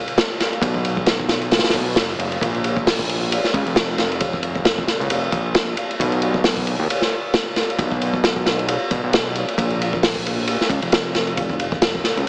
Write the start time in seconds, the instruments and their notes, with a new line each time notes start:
0.08 ride
0.18 snare, ride
0.40 snare, ride
0.53 ride
0.62 analog synth bass B1, kick, ride
0.74 kick
0.85 ride
0.97 kick
1.06 snare, ride
1.20 kick
1.28 snare, ride
1.42 ride
1.51 snare, open hi-hat
1.58 snare, open hi-hat
1.64 snare, open hi-hat
1.69 snare, open hi-hat, ride
1.74 analog synth bass B1, kick
1.96 analog synth bass F#1, snare, ride
2.19 analog synth bass F#1, ride
2.32 ride
2.41 analog synth bass A#1, kick, ride
2.54 ride
2.64 ride
2.77 kick
2.87 snare, open hi-hat
2.99 kick
3.09 ride
3.32 ride
3.44 snare
3.54 analog synth bass C#2, kick, ride
3.66 analog synth bass F1, ride
3.76 snare, ride
3.98 snare, ride
4.12 ride
4.20 kick, ride
4.33 kick
4.43 ride
4.55 kick
4.65 snare, ride
4.78 kick
4.87 snare, ride
5.00 analog synth bass C#2, ride
5.10 analog synth bass F1, ride
5.32 analog synth bass A#1, kick, ride
5.55 snare, ride
5.77 ride
5.91 ride
6.00 analog synth bass B1, kick, ride
6.12 ride
6.22 ride
6.34 kick
6.44 snare, open hi-hat
6.57 kick
6.67 ride
6.79 analog synth bass D#2
6.90 ride
7.02 snare
7.34 snare, ride
7.56 snare, ride
7.70 ride
7.79 analog synth bass B1, kick, ride
7.92 kick
8.02 ride
8.14 kick
8.24 snare, ride
8.36 kick
8.46 snare, ride
8.59 ride
8.68 ride
8.91 analog synth bass B1, kick, ride
9.03 analog synth bass B1
9.13 snare, ride
9.35 ride
9.48 ride
9.58 analog synth bass A#1, kick, ride
9.70 ride
9.82 ride
9.93 kick
10.03 snare, open hi-hat
10.15 kick
10.27 ride
10.47 ride
10.61 snare
10.70 analog synth bass C#2, kick, ride
10.82 analog synth bass F1, ride
10.92 snare, ride
11.15 snare, ride
11.27 ride
11.37 kick, ride
11.50 kick
11.60 ride
11.72 kick
11.82 snare, ride
11.95 kick
12.04 snare, ride
12.17 analog synth bass C#2, ride